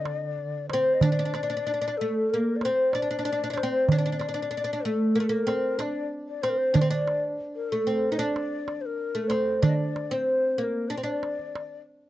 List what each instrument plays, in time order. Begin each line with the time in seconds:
Already playing: duduk D3, oud D4, ney D5
0.05 darbuka tek
0.38 darbuka ka
0.69 ney C5, darbuka tek
0.73 oud C4
0.85 darbuka ka
0.94 ney D#5
1.01 oud D4, ney D5, darbuka dum
1.12 oud D4
1.19 oud D4
1.25 oud D4
1.34 oud D4, darbuka tek
1.43 oud D4
1.50 oud D4
1.57 oud D4
1.67 oud D4, darbuka ka
1.74 oud D4
1.81 oud D4
1.88 oud D4
1.97 oud A3, ney A4
2.30 ney A#4
2.34 oud A#3
2.56 ney D5
2.61 oud C4, ney C5, darbuka tek
2.92 oud D4, ney D5, darbuka tek
3.02 oud D4
3.11 oud D4
3.19 oud D4
3.25 oud D4
3.32 oud D4
3.44 oud D4
3.50 oud D4
3.57 ney C5, darbuka tek
3.63 oud C4
3.89 oud D4, ney D5, darbuka dum
3.98 oud D4
4.06 oud D4
4.12 oud D4
4.19 oud D4, darbuka tek
4.29 oud D4
4.34 oud D4
4.42 oud D4
4.51 oud D4, darbuka ka
4.57 oud D4
4.64 oud D4
4.73 oud D4
4.85 oud A3, ney A4
5.15 oud A#3, ney A#4
5.20 oud A3
5.29 oud A#3, ney A#4
5.47 oud C4, darbuka tek
5.79 oud D4, ney D#5, darbuka tek
5.83 ney D5
6.28 ney D5
6.42 oud C4, ney C5, darbuka tek
6.49 ney A#4
6.57 ney C5
6.74 oud D4, ney D5, darbuka dum
6.81 oud C4
6.89 oud D4, ney D5
7.07 darbuka tek
7.41 darbuka ka
7.55 ney A#4
7.70 oud A3, ney A4
7.87 oud C4
8.12 oud D#4
8.19 oud D4, ney D5
8.36 darbuka tek
8.68 darbuka tek
8.81 ney C5
8.86 ney A#4
9.15 oud A3
9.28 oud C4, ney D5, darbuka tek
9.33 ney C5
9.61 oud D4, ney D5, darbuka dum
9.69 ney D#5
9.76 ney D5
9.80 darbuka ka
9.96 darbuka tek
10.10 oud C4, ney C5 D5
10.58 oud A#3, ney C5
10.63 ney A#4
10.89 oud D4, ney D5
10.98 oud C4
11.03 oud D4, ney D5
11.23 darbuka tek
11.39 darbuka ka
11.55 darbuka tek